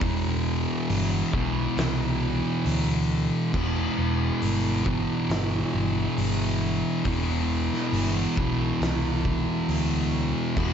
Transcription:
0.01 E1 E2 B2 E3, kick, open hi-hat
0.90 G1, open hi-hat
1.33 B1 E2 B2 E3, kick
1.77 C2, snare, open hi-hat
2.65 D2, open hi-hat
3.53 E1 E2 B2 E3, kick, crash
3.98 E1
4.42 G1, open hi-hat
4.85 E2 B2 E3, kick
5.29 G1, snare, open hi-hat
5.74 G1
6.18 G1, open hi-hat
7.05 E1 E2 B2 E3, kick, open hi-hat
7.73 snare
7.92 G1, open hi-hat
8.37 B1 E2 B2 E3, kick
8.81 C2, snare, open hi-hat
9.25 kick
9.68 D2, open hi-hat
10.57 E1 E2 B2 E3, kick, crash

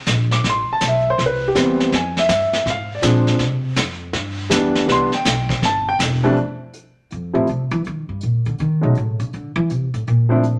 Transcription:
0.06 A#1, kick, snare, hi-hat pedal
0.31 D6, snare
0.44 A1, brush sweep, kick, snare
0.50 C6
0.68 muted upright bass stroke
0.73 A5
0.81 B1, kick, snare, hi-hat pedal
0.87 E5
1.10 C5
1.18 C2, brush sweep, kick, snare
1.26 B4
1.48 G4
1.55 E2 E3 G3 B3 C4, kick, snare, hi-hat pedal
1.80 snare
1.92 F2 G#5, brush sweep, kick, snare
2.17 E5, snare
2.29 G2, kick, snare, hi-hat pedal
2.53 snare
2.66 G#2, brush sweep, kick, snare
2.70 F5
2.95 D5
3.02 A#2 F3 G#3 C4 D4, kick, snare, hi-hat pedal
3.27 snare
3.39 C3, brush sweep, kick, snare
3.76 F2, kick, snare, hi-hat pedal
4.13 G2, brush sweep, kick, snare
4.50 E2 E3 G3 B3 D4, kick, snare, hi-hat pedal
4.75 snare
4.86 C2 E3 G3 B3 D4, brush sweep, kick, snare
4.92 C6
5.12 G5, muted upright bass stroke, snare
5.25 B1, kick, snare, hi-hat pedal
5.49 kick, snare
5.62 G1 A5, brush sweep, kick, snare
5.89 G5
5.99 E1, kick, snare, hi-hat pedal
6.23 F2 E3 G3 A3 D4
6.36 closed hi-hat
6.74 closed hi-hat
7.11 F2, closed hi-hat
7.33 A2 F3 G3 A3 C4 E4
7.47 C3, closed hi-hat
7.71 E3, closed hi-hat
7.84 D#3, closed hi-hat
8.09 G2
8.21 A#2, closed hi-hat
8.45 D3, closed hi-hat
8.58 D#3, closed hi-hat
8.81 B2 F#3 G#3 A3 C#4 D#4
8.95 A2, closed hi-hat
9.20 C#3, closed hi-hat
9.33 D3, closed hi-hat
9.56 E3
9.70 C3, closed hi-hat
9.94 A2, closed hi-hat
10.07 A#2, closed hi-hat
10.29 F3 A3 C4 D4 E4
10.43 closed hi-hat

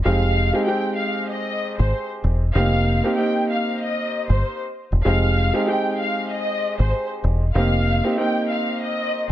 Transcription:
0.05 F1 G#3 C4 D#4 G4 F5
0.53 G#3 C4 D#4 G4
0.66 G#3 C4 D#4 G4 G5
0.97 F5
1.30 D#5
1.79 G#1 C5
2.24 E1
2.54 F1 A#3 C4 D#4 G4 F5
3.04 A#3 C4 D#4 G4
3.17 A#3 C4 D#4 G4 G5
3.49 F5
3.80 D#5
4.28 G1 C5
4.92 E1
5.05 F1 G#3 C4 D#4 G4 F5
5.53 G#3 C4 D#4 G4
5.67 G#3 C4 D#4 G4 G5
6.00 F5
6.30 D#5
6.78 G#1 C5
7.24 E1
7.54 F1 A#3 C4 D#4 G4 F5
8.04 A#3 C4 D#4 G4
8.17 A#3 C4 D#4 G4 G5
8.48 F5
8.79 D#5

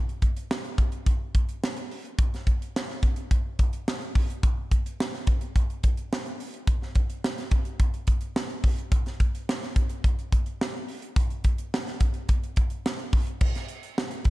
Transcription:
0.09 closed hi-hat
0.22 kick, closed hi-hat
0.36 closed hi-hat
0.51 snare
0.65 closed hi-hat
0.78 kick, closed hi-hat
0.92 closed hi-hat
1.06 kick, closed hi-hat
1.35 kick, closed hi-hat
1.49 closed hi-hat
1.64 snare
1.77 closed hi-hat
1.91 open hi-hat
2.05 closed hi-hat
2.19 kick, closed hi-hat
2.34 snare, closed hi-hat
2.47 kick, closed hi-hat
2.62 closed hi-hat
2.76 snare
2.90 snare
3.03 kick, closed hi-hat
3.16 closed hi-hat
3.31 kick, closed hi-hat
3.59 kick, closed hi-hat
3.73 closed hi-hat
3.88 snare
4.02 closed hi-hat
4.15 kick, open hi-hat
4.30 closed hi-hat
4.43 kick, closed hi-hat
4.71 kick, closed hi-hat
4.86 closed hi-hat
5.00 snare
5.14 snare
5.27 kick, closed hi-hat
5.41 closed hi-hat
5.56 kick, closed hi-hat
5.70 closed hi-hat
5.83 kick, closed hi-hat
5.97 closed hi-hat
6.13 snare
6.26 closed hi-hat
6.40 open hi-hat
6.54 closed hi-hat
6.67 kick, closed hi-hat
6.82 snare
6.95 kick, closed hi-hat
7.10 closed hi-hat
7.24 snare
7.38 snare, closed hi-hat
7.51 kick, closed hi-hat
7.65 closed hi-hat
7.80 kick, closed hi-hat
7.94 closed hi-hat
8.07 kick, closed hi-hat
8.21 closed hi-hat
8.36 snare
8.49 closed hi-hat
8.64 kick, open hi-hat
8.78 closed hi-hat
8.92 kick, closed hi-hat
9.06 snare, closed hi-hat
9.20 kick, closed hi-hat
9.35 closed hi-hat
9.49 snare
9.62 snare, closed hi-hat
9.76 kick, closed hi-hat
9.89 closed hi-hat
10.04 kick, closed hi-hat
10.19 closed hi-hat
10.32 kick, closed hi-hat
10.46 closed hi-hat
10.61 snare
10.88 open hi-hat
11.02 closed hi-hat
11.16 kick, closed hi-hat
11.30 closed hi-hat
11.44 kick, closed hi-hat
11.58 closed hi-hat
11.74 snare
11.87 snare, closed hi-hat
12.00 kick, closed hi-hat
12.14 closed hi-hat
12.29 kick, closed hi-hat
12.43 closed hi-hat
12.56 kick, closed hi-hat
12.70 closed hi-hat
12.86 snare
12.98 closed hi-hat
13.13 kick, open hi-hat
13.27 closed hi-hat
13.41 kick, crash
13.55 snare, closed hi-hat
13.68 closed hi-hat
13.83 closed hi-hat
13.98 snare
14.11 closed hi-hat
14.25 kick, closed hi-hat

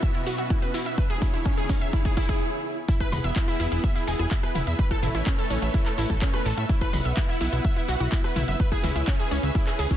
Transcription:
Already playing: B2 B3 F#4 E5, riser
0.03 E5, kick, closed hi-hat
0.15 E4, closed hi-hat
0.27 F#4, open hi-hat
0.38 F#4, closed hi-hat
0.50 E4, kick, closed hi-hat
0.62 B4, closed hi-hat
0.74 E4, open hi-hat
0.86 E5, closed hi-hat
0.98 C#3 E4 B4 C#5, kick, closed hi-hat
1.10 G#4, closed hi-hat
1.22 E4, kick, open hi-hat
1.34 E4, closed hi-hat
1.46 C#4, kick, closed hi-hat
1.57 G#4, closed hi-hat
1.69 C#4, kick, open hi-hat
1.81 E5, closed hi-hat
1.93 E4, kick, closed hi-hat, swell
2.05 G#4, kick, closed hi-hat
2.17 E4, kick, open hi-hat
2.29 G#4, kick, closed hi-hat
2.88 B3 E4 G#4 E5, kick, closed hi-hat, shaker
3.00 B4 B5, kick, cross-stick, closed hi-hat, high conga, shaker
3.12 E1 B5, open hi-hat, mid tom
3.24 E1 E5 E6, closed hi-hat, shaker
3.36 E4 E5, kick, clap, closed hi-hat, shaker
3.47 E4 E5, closed hi-hat, shaker
3.60 E1 E4 E5, open hi-hat, high conga
3.72 E1 E4 E5, closed hi-hat, shaker
3.83 E5 E6, kick, closed hi-hat, shaker
3.96 E4 E5, closed hi-hat, shaker
4.07 E1 G#4 G#5, open hi-hat
4.19 E1 G#4 G#5, closed hi-hat, high conga, shaker
4.31 E4 E5, kick, clap, closed hi-hat, shaker
4.43 B4 B5, cross-stick, closed hi-hat, shaker
4.55 E1 E4 E5, open hi-hat, mid tom
4.67 E2 E5 E6, closed hi-hat, shaker
4.78 A3 A4 B4 C#5 B5, kick, closed hi-hat, shaker
4.91 A4 A5, kick, cross-stick, closed hi-hat, high conga, shaker
5.03 A1 E4 E5, open hi-hat, mid tom
5.15 A1 E4 E5, closed hi-hat, shaker
5.26 C#4 C#5, kick, clap, closed hi-hat, shaker
5.38 A4 A5, closed hi-hat, shaker
5.50 A1 C#4 C#5, open hi-hat, high conga
5.62 A1 E5 E6, closed hi-hat, shaker
5.74 E4 E5, kick, closed hi-hat, shaker
5.86 A4 A5, clap, closed hi-hat, shaker
5.98 A1 E4 E5, open hi-hat
6.10 A1 A4 A5, kick, closed hi-hat, high conga, shaker
6.22 C#4 C#5, kick, clap, closed hi-hat, shaker
6.34 B4 B5, cross-stick, closed hi-hat, shaker
6.46 A1 A4 A5, open hi-hat
6.57 A2 E5 E6, closed hi-hat, shaker
6.69 B3 E4 B4 E5 F#5, kick, closed hi-hat, shaker
6.81 B4 B5, kick, cross-stick, closed hi-hat, high conga, shaker
6.93 B1 B5, open hi-hat, mid tom
7.05 B1 E5 E6, closed hi-hat, shaker
7.17 E4 E5, kick, clap, closed hi-hat, shaker
7.29 E4 E5, closed hi-hat, shaker
7.41 B1 E4 E5, open hi-hat, high conga
7.53 B1 E4 E5, closed hi-hat, shaker
7.64 E5 E6, kick, closed hi-hat, shaker
7.76 E4 E5, closed hi-hat, shaker
7.88 B1 F#4 F#5, open hi-hat
7.99 B1 F#4 F#5, closed hi-hat, high conga, shaker
8.11 E4 E5, kick, clap, closed hi-hat, shaker
8.24 B4 B5, cross-stick, closed hi-hat, shaker
8.36 B1 E4 E5, open hi-hat, mid tom
8.48 F#1 E5 E6, closed hi-hat, shaker
8.60 C#4 G#4 B4 B5, kick, closed hi-hat, shaker
8.71 G#4 G#5, kick, cross-stick, closed hi-hat, high conga, shaker
8.84 C#2 E4 E5, open hi-hat, mid tom
8.95 C#2 E4 E5, closed hi-hat, shaker
9.07 C#4 C#5, kick, clap, closed hi-hat, shaker
9.19 G#4 G#5, closed hi-hat, shaker
9.31 C#2 C#4 C#5, open hi-hat, high conga
9.43 C#2 E5 E6, closed hi-hat, shaker
9.55 E4 E5, kick, closed hi-hat, shaker
9.67 G#4 G#5, clap, closed hi-hat, shaker
9.79 C#2 G#4 G#5, open hi-hat
9.91 C#2 C#4 C#5, kick, closed hi-hat, high conga, shaker

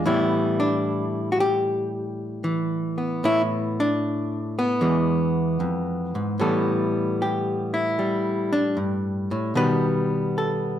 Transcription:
0.06 A2 E3 G3 B3 E4
0.60 D4
1.32 F#4
1.40 G4
2.44 E3
2.98 B3
3.24 A2 E4
3.80 D4
4.59 B3
4.81 E2 E3 G#3
5.60 F2
6.15 G#2
6.39 A2 E3 G3 B3 A4
7.22 G4
7.74 E4
7.99 G3
8.53 D4
8.77 G2
9.31 A2
9.55 B2 D#3 G3 B3 B4
10.38 A4

